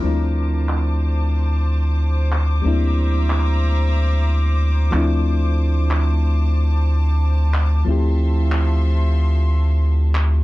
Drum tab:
CP |--x----x|--x----x|--x----x|--x----x|